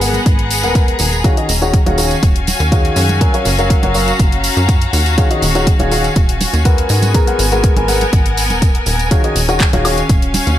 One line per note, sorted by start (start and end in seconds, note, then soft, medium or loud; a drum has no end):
0.00 0.19 G#1 medium
0.00 0.15 G#3 medium
0.00 1.24 B3 medium
0.00 2.03 G#4 medium
0.00 0.15 G#4 medium
0.00 0.15 A#4 medium
0.00 0.15 B4 medium
0.00 1.24 F#5 medium
0.00 0.15 F#5 medium
0.00 2.03 A#5 medium
0.00 open hi-hat medium
0.00 tambourine medium
0.14 closed hi-hat soft
0.14 tambourine soft
0.14 high conga medium
0.26 0.65 G#1 medium
0.26 kick loud
0.26 closed hi-hat medium
0.26 tambourine soft
0.39 closed hi-hat soft
0.51 open hi-hat loud
0.51 tambourine medium
0.63 0.93 D#1 medium
0.63 1.22 G#3 medium
0.63 1.22 G#4 medium
0.63 1.22 A#4 medium
0.63 1.22 B4 medium
0.63 1.22 F#5 medium
0.63 closed hi-hat soft
0.63 tambourine soft
0.75 kick loud
0.75 closed hi-hat medium
0.75 tambourine soft
0.88 closed hi-hat soft
0.99 1.30 D#1 medium
0.99 open hi-hat loud
0.99 tambourine medium
1.13 closed hi-hat soft
1.13 tambourine soft
1.24 1.35 D#3 medium
1.24 7.79 C#4 medium
1.24 1.35 F#4 medium
1.24 1.35 G#4 medium
1.24 1.35 C#5 medium
1.24 1.35 F5 loud
1.24 kick loud
1.24 closed hi-hat medium
1.24 tambourine soft
1.37 1.50 D#3 medium
1.37 1.50 F#4 medium
1.37 1.50 G#4 medium
1.37 1.50 C#5 medium
1.37 1.50 D#5 medium
1.37 closed hi-hat soft
1.49 1.79 D#1 medium
1.49 open hi-hat loud
1.49 tambourine medium
1.62 1.75 D#3 medium
1.62 1.75 F#4 medium
1.62 1.75 G#4 medium
1.62 1.75 C#5 medium
1.62 1.75 F#5 medium
1.62 closed hi-hat soft
1.62 tambourine soft
1.71 7.79 F#4 medium
1.71 kick loud
1.71 closed hi-hat medium
1.71 tambourine soft
1.86 2.16 D#1 loud
1.86 1.96 D#3 medium
1.86 1.96 F#4 medium
1.86 1.96 G#4 medium
1.86 1.96 C#5 medium
1.86 1.96 F5 loud
1.86 closed hi-hat soft
1.86 high conga medium
1.97 2.12 D#3 medium
1.97 2.12 F#4 medium
1.97 2.12 G#4 medium
1.97 2.12 C#5 medium
1.97 2.12 F5 medium
1.97 3.90 G#5 medium
1.97 open hi-hat medium
1.97 tambourine medium
2.11 6.90 F5 medium
2.11 closed hi-hat soft
2.11 tambourine soft
2.23 2.52 D#1 medium
2.23 kick loud
2.23 closed hi-hat medium
2.23 tambourine soft
2.36 closed hi-hat soft
2.47 open hi-hat loud
2.47 tambourine medium
2.47 high conga medium
2.60 2.89 D#2 medium
2.60 closed hi-hat soft
2.60 tambourine medium
2.72 3.18 D#3 medium
2.72 3.18 F#4 medium
2.72 3.18 G#4 medium
2.72 3.18 C#5 medium
2.72 3.18 F5 loud
2.72 kick loud
2.72 closed hi-hat medium
2.72 tambourine soft
2.85 closed hi-hat soft
2.96 3.26 F#2 loud
2.96 open hi-hat medium
2.96 tambourine medium
3.09 closed hi-hat soft
3.09 tambourine soft
3.09 high conga medium
3.21 3.32 F#3 medium
3.21 3.32 F#4 medium
3.21 3.32 A#4 medium
3.21 3.32 C#5 medium
3.21 3.32 G#5 medium
3.21 kick loud
3.21 closed hi-hat medium
3.21 tambourine soft
3.34 3.47 F#3 medium
3.34 3.47 F#4 medium
3.34 3.47 A#4 medium
3.34 3.47 C#5 medium
3.34 3.47 F5 medium
3.34 closed hi-hat soft
3.45 3.75 F#1 medium
3.45 open hi-hat medium
3.45 tambourine medium
3.59 3.79 F#3 medium
3.59 3.79 F#4 medium
3.59 3.79 A#4 medium
3.59 3.79 C#5 medium
3.59 3.79 F5 medium
3.59 closed hi-hat soft
3.59 tambourine soft
3.70 kick loud
3.70 closed hi-hat medium
3.70 tambourine soft
3.83 4.12 F#1 loud
3.83 3.93 F#3 medium
3.83 3.93 F#4 medium
3.83 3.93 A#4 medium
3.83 3.93 C#5 medium
3.83 3.93 F#5 loud
3.83 closed hi-hat soft
3.83 high conga medium
3.94 4.09 F#3 medium
3.94 4.09 F#4 medium
3.94 4.09 A#4 medium
3.94 4.09 C#5 medium
3.94 4.09 F5 medium
3.94 open hi-hat medium
3.94 tambourine medium
3.99 5.72 A#5 medium
4.08 closed hi-hat soft
4.08 tambourine soft
4.19 4.49 F#1 medium
4.19 kick loud
4.19 closed hi-hat medium
4.19 tambourine soft
4.32 closed hi-hat soft
4.44 open hi-hat loud
4.44 tambourine medium
4.57 4.86 F#2 medium
4.57 closed hi-hat soft
4.57 tambourine medium
4.69 kick loud
4.69 closed hi-hat medium
4.69 tambourine soft
4.82 closed hi-hat soft
4.93 5.23 D#2 loud
4.93 open hi-hat medium
4.93 tambourine medium
5.06 closed hi-hat soft
5.06 tambourine soft
5.18 5.29 D#3 medium
5.18 5.29 F#4 medium
5.18 5.29 G#4 medium
5.18 5.29 C#5 medium
5.18 5.29 F5 loud
5.18 kick loud
5.18 closed hi-hat medium
5.18 tambourine soft
5.31 5.43 D#3 medium
5.31 5.43 F#4 medium
5.31 5.43 G#4 medium
5.31 5.43 C#5 medium
5.31 5.43 D#5 medium
5.31 closed hi-hat medium
5.38 10.59 G#5 medium
5.42 5.72 D#1 medium
5.42 open hi-hat medium
5.42 tambourine medium
5.55 5.68 D#3 medium
5.55 5.68 F#4 medium
5.55 5.68 G#4 medium
5.55 5.68 C#5 medium
5.55 5.68 F#5 loud
5.55 closed hi-hat soft
5.55 tambourine soft
5.66 kick loud
5.66 closed hi-hat medium
5.66 tambourine soft
5.79 6.09 D#1 loud
5.79 5.90 D#3 medium
5.79 5.90 F#4 medium
5.79 5.90 G#4 medium
5.79 5.90 C#5 medium
5.79 5.90 F5 loud
5.79 closed hi-hat soft
5.79 high conga medium
5.92 6.05 D#3 medium
5.92 6.05 F#4 medium
5.92 6.05 G#4 medium
5.92 6.05 C#5 medium
5.92 6.05 F5 medium
5.92 open hi-hat medium
5.92 tambourine medium
6.04 closed hi-hat soft
6.04 tambourine soft
6.16 6.46 D#1 medium
6.16 kick loud
6.16 closed hi-hat medium
6.16 tambourine soft
6.29 closed hi-hat medium
6.41 open hi-hat loud
6.41 tambourine medium
6.41 high conga medium
6.54 6.83 D#2 medium
6.54 closed hi-hat soft
6.54 tambourine soft
6.65 7.12 G#3 medium
6.65 7.12 G#4 medium
6.65 7.12 A#4 medium
6.65 7.12 B4 medium
6.65 7.12 F#5 loud
6.65 kick loud
6.65 closed hi-hat medium
6.65 tambourine soft
6.78 closed hi-hat medium
6.89 7.20 G#2 loud
6.89 9.11 B3 medium
6.89 open hi-hat medium
6.89 tambourine medium
7.02 closed hi-hat soft
7.02 tambourine soft
7.02 high conga medium
7.14 7.25 G#3 medium
7.14 7.25 G#4 medium
7.14 7.25 A#4 medium
7.14 7.25 B4 medium
7.14 7.25 A#5 medium
7.14 kick loud
7.14 closed hi-hat medium
7.14 tambourine soft
7.27 7.40 G#3 medium
7.27 7.40 G#4 medium
7.27 7.40 A#4 medium
7.27 7.40 B4 medium
7.27 7.40 F#5 medium
7.27 closed hi-hat soft
7.39 7.69 G#1 loud
7.39 9.90 A#4 medium
7.39 open hi-hat medium
7.39 tambourine medium
7.52 7.73 G#3 medium
7.52 7.73 G#4 medium
7.52 7.73 A#4 medium
7.52 7.73 B4 medium
7.52 7.73 F#5 medium
7.52 closed hi-hat soft
7.52 tambourine soft
7.63 kick loud
7.63 closed hi-hat medium
7.63 tambourine soft
7.76 8.06 G#1 medium
7.76 7.87 G#3 medium
7.76 7.87 G#4 medium
7.76 7.87 A#4 medium
7.76 7.87 B4 medium
7.76 7.87 G#5 loud
7.76 closed hi-hat medium
7.76 high conga medium
7.88 8.02 G#3 medium
7.88 8.02 G#4 medium
7.88 8.02 A#4 medium
7.88 8.02 B4 medium
7.88 8.02 F#5 medium
7.88 9.11 F#5 medium
7.88 open hi-hat medium
7.88 tambourine medium
8.01 closed hi-hat soft
8.01 tambourine soft
8.01 high conga medium
8.12 8.52 G#1 medium
8.12 kick loud
8.12 closed hi-hat medium
8.12 tambourine soft
8.26 closed hi-hat medium
8.37 open hi-hat loud
8.37 tambourine medium
8.50 8.80 D#1 medium
8.50 closed hi-hat soft
8.50 tambourine soft
8.50 high conga medium
8.62 kick loud
8.62 closed hi-hat medium
8.62 tambourine soft
8.75 closed hi-hat medium
8.86 9.16 D#1 medium
8.86 open hi-hat medium
8.86 tambourine medium
8.99 closed hi-hat soft
8.99 tambourine soft
9.11 9.22 D#3 medium
9.11 10.59 C#4 medium
9.11 9.22 F#4 medium
9.11 9.22 G#4 medium
9.11 9.22 C#5 medium
9.11 9.22 F5 loud
9.11 kick loud
9.11 closed hi-hat medium
9.11 tambourine soft
9.24 9.37 D#3 medium
9.24 9.37 F#4 medium
9.24 9.37 G#4 medium
9.24 9.37 C#5 medium
9.24 9.37 D#5 medium
9.24 closed hi-hat soft
9.36 9.66 D#1 medium
9.36 open hi-hat loud
9.36 tambourine medium
9.49 9.61 D#3 medium
9.49 9.61 F#4 medium
9.49 9.61 G#4 medium
9.49 9.61 C#5 medium
9.49 9.61 F#5 loud
9.49 closed hi-hat soft
9.49 tambourine medium
9.60 kick loud
9.60 clap loud
9.60 closed hi-hat medium
9.60 tambourine soft
9.64 10.59 F#4 medium
9.73 10.03 D#1 medium
9.73 9.83 D#3 medium
9.73 9.83 F#4 medium
9.73 9.83 G#4 medium
9.73 9.83 C#5 medium
9.73 9.83 F5 loud
9.73 10.59 F5 medium
9.73 closed hi-hat medium
9.73 high conga medium
9.85 9.99 D#3 medium
9.85 9.99 F#4 medium
9.85 9.99 G#4 medium
9.85 9.99 C#5 medium
9.85 9.99 F5 loud
9.85 open hi-hat loud
9.85 tambourine medium
9.85 high woodblock medium
9.97 closed hi-hat soft
9.97 tambourine soft
10.09 10.39 D#1 medium
10.09 kick loud
10.09 closed hi-hat medium
10.09 tambourine soft
10.22 closed hi-hat medium
10.34 open hi-hat loud
10.34 tambourine medium
10.34 high conga medium
10.47 10.59 D#2 medium
10.47 closed hi-hat soft
10.47 tambourine soft